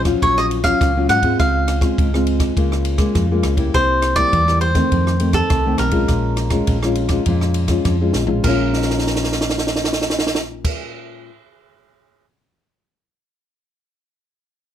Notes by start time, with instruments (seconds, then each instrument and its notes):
Already playing: fingered electric bass A#1, nylon-string guitar F3
0.05 nylon-string guitar F#3 C#4 F4, kick, cross-stick, ride
0.22 fingered electric bass A#1, nylon-string guitar A#2, cavaquinho C#5, kick, ride
0.38 cavaquinho D#5, cross-stick
0.51 ride
0.64 nylon-string guitar F#3 C#4 F4, cavaquinho F5, kick, cross-stick, ride
0.81 fingered electric bass C#2, nylon-string guitar A#2, kick, cross-stick, ride
0.96 nylon-string guitar F#3 C#4 F4
1.09 fingered electric bass G#2, cavaquinho F#5, cross-stick, ride
1.23 nylon-string guitar G#3 C4 F4, kick, ride
1.40 fingered electric bass C#2, nylon-string guitar C#3, cavaquinho F5, kick, cross-stick, ride
1.68 cross-stick, ride
1.81 nylon-string guitar G#3 C4 F4, kick, cross-stick, ride
1.98 fingered electric bass C#2, nylon-string guitar G#2, kick, ride
2.13 nylon-string guitar G#3 C4 F4, cross-stick
2.27 ride
2.40 kick, cross-stick, ride
2.56 fingered electric bass C#2, nylon-string guitar C#3 G#3 A#3 F4, kick, ride
2.72 cross-stick
2.85 ride
2.98 nylon-string guitar G#3 A#3 F4, kick, cross-stick, ride
3.15 fingered electric bass F2, nylon-string guitar C#3, kick, cross-stick, ride
3.31 nylon-string guitar G#3 A#3 F4
3.43 fingered electric bass C#2, cross-stick, ride
3.57 nylon-string guitar G3 A#3 E4, kick, ride
3.74 fingered electric bass C2, nylon-string guitar C3, cavaquinho C5, kick, cross-stick, ride
4.02 cross-stick, ride
4.16 nylon-string guitar G3 A#3 E4, cavaquinho D5, kick, cross-stick, ride
4.33 fingered electric bass E2, nylon-string guitar G2, kick, ride
4.48 nylon-string guitar G3 A#3 E4, cross-stick
4.61 cavaquinho C5, ride
4.74 nylon-string guitar D#3 A3 C4, kick, cross-stick, ride
4.91 nylon-string guitar F2, fingered electric bass F2, kick, ride
5.07 cross-stick
5.19 nylon-string guitar D#3 A3 C4, ride
5.33 cavaquinho A4, kick, cross-stick, ride
5.50 fingered electric bass C2, nylon-string guitar C3, kick, cross-stick, ride
5.65 nylon-string guitar D#3 A3 C4
5.78 fingered electric bass B1, cavaquinho A#4, cross-stick, ride
5.91 nylon-string guitar G#3 C#4 F4, kick, ride
6.08 fingered electric bass A#1, nylon-string guitar A#2, kick, cross-stick, ride
6.37 cross-stick, ride
6.50 nylon-string guitar G#3 C#4 F4, kick, cross-stick, ride
6.67 fingered electric bass A#1, nylon-string guitar F2, kick, ride
6.83 nylon-string guitar G#3 C#4 F4, cross-stick
6.95 ride
7.09 nylon-string guitar G#3 C#4 F4, kick, cross-stick, ride
7.26 fingered electric bass F2, nylon-string guitar A#2 G#3 C#4 F4, kick, ride
7.41 cross-stick
7.54 ride
7.68 nylon-string guitar G#3 C#4 F4, kick, cross-stick, ride
7.85 fingered electric bass F2, nylon-string guitar F2, kick, cross-stick, ride
8.01 nylon-string guitar G#3 C#4 F4
8.13 fingered electric bass A#1, snare
8.27 nylon-string guitar G#3 C#4 F4, floor tom
8.42 fingered electric bass A#1, nylon-string guitar A#2 G#3, cavaquinho A#4, kick, crash
8.47 nylon-string guitar C#4 F4
8.73 snare
8.82 snare
8.90 snare
8.99 snare
9.07 snare
9.16 snare
9.24 snare
9.32 snare
9.41 snare
9.50 snare
9.58 snare
9.67 snare
9.76 snare
9.84 snare
9.93 snare
10.02 snare
10.10 snare
10.19 snare
10.27 snare
10.35 snare
10.65 kick, crash